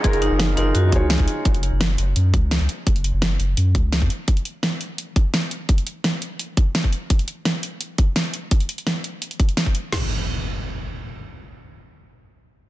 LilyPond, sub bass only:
\new Staff \with { instrumentName = "Sub bass" } { \clef bass \time 4/4 \key fis \major \tempo 4 = 170 fis,,8. fis,,8. fis,,8 fis,8 cis,8. cis,16 r8 | fis,,8. fis,,8. fis,,8 fis,8 cis,8. cis,16 r8 | fis,,8. fis,,8. fis,,8 fis,8 cis,8. fis,16 r8 | r1 |
r1 | r1 | r1 | r1 |
r1 | }